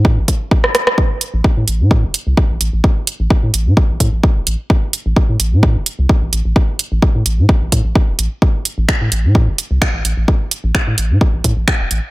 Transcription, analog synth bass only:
0.00 0.19 A2 medium
0.17 0.25 G1 loud
1.34 1.41 A1 loud
1.57 1.64 A2 medium
1.68 1.82 A1 medium
1.80 2.05 A2 medium
2.03 2.11 E1 loud
2.27 2.34 C2 medium
2.50 2.57 A1 medium
2.61 2.69 A1 loud
2.73 2.81 A1 medium
3.20 3.27 A1 loud
3.43 3.50 A2 medium
3.54 3.68 A1 medium
3.66 3.74 A2 medium
3.90 3.97 A1 medium
4.00 4.09 A2 medium
4.13 4.20 A1 medium
4.36 4.43 E1 medium
4.47 4.55 A1 medium
5.06 5.13 A1 loud
5.29 5.36 A2 medium
5.40 5.54 A1 medium
5.52 5.77 A2 medium
5.75 5.83 E1 loud
5.99 6.06 C2 medium
6.22 6.29 A1 loud
6.33 6.41 A1 loud
6.45 6.53 A1 medium
6.92 6.99 A1 loud
7.15 7.22 A2 medium
7.26 7.40 A1 medium
7.38 7.46 A2 medium
7.61 7.69 A1 medium
7.72 7.81 A2 medium
7.85 7.92 A1 medium
8.08 8.15 E1 medium
8.19 8.27 A1 medium
8.78 8.85 A1 loud
9.01 9.08 A2 medium
9.12 9.26 A1 medium
9.24 9.49 A2 medium
9.47 9.55 E1 loud
9.71 9.78 C2 medium
9.94 10.01 A1 medium
10.05 10.13 A1 loud
10.17 10.25 A1 medium
10.64 10.71 A1 loud
10.87 10.94 A2 medium
10.98 11.12 A1 medium
11.10 11.18 A2 medium
11.34 11.41 A1 medium
11.44 11.53 A2 medium
11.57 11.64 A1 medium
11.80 11.87 E1 medium
11.91 11.99 A1 medium

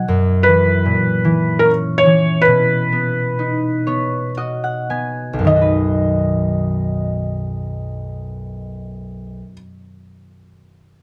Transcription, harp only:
0.00 0.12 B2 soft
0.00 0.12 F#3 medium
0.00 0.54 D#5 medium
0.00 1.29 F#5 medium
0.00 1.00 G#5 medium
0.08 0.89 F#2 medium
0.48 0.89 E3 soft
0.86 2.52 A#2 soft
1.25 2.04 E3 soft
1.65 4.55 C#4 soft
2.06 2.52 E3 soft
2.47 5.51 B2 medium
2.92 3.87 B3 soft
3.39 6.09 D#4 soft
3.87 4.90 B3 soft
3.87 5.78 C#5 medium
4.37 5.56 F#4 soft
4.37 6.16 D#5 medium
4.64 6.25 F#5 medium
4.90 5.50 B3 soft
4.90 6.40 G#5 medium
5.33 9.40 B1 soft
5.39 9.45 F#2 soft
5.45 9.51 D#3 soft
5.50 9.57 B3 soft
5.56 9.62 F#4 soft
5.62 9.68 B4 soft

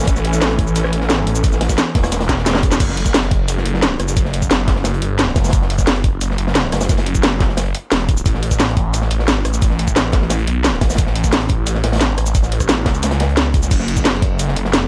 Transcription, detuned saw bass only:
0.08 0.40 A1 medium
0.42 0.91 A1 loud
0.93 1.26 A1 loud
1.27 1.43 A1 loud
1.44 1.77 A1 loud
1.95 2.79 E1 loud
2.80 3.13 F#1 loud
3.14 3.64 F#1 loud
3.65 3.98 F#1 loud
4.00 4.15 F#1 loud
4.17 4.49 F#1 loud
4.51 5.01 F#1 loud
5.02 5.35 G1 loud
5.36 5.52 F#1 loud
5.53 5.86 F#1 loud
5.87 6.37 F#1 loud
6.38 6.71 F#1 loud
6.72 6.88 F#1 medium
6.89 7.22 F#1 loud
7.24 7.73 F#1 medium
7.92 8.24 E1 loud
8.26 8.58 A1 loud
8.60 9.10 A1 loud
9.11 9.44 A1 loud
9.45 9.61 A1 loud
9.62 9.95 A1 loud
9.96 10.46 A1 loud
10.47 10.80 B1 loud
10.81 10.97 A1 loud
10.98 11.31 A1 loud
11.32 11.82 A1 loud
11.84 12.16 A1 loud
12.18 12.33 A1 loud
12.35 12.68 A1 loud
12.69 12.85 A1 loud
12.86 13.70 C#2 loud
13.71 14.04 F#1 loud
14.05 14.55 F#1 medium
14.56 14.88 F#1 loud

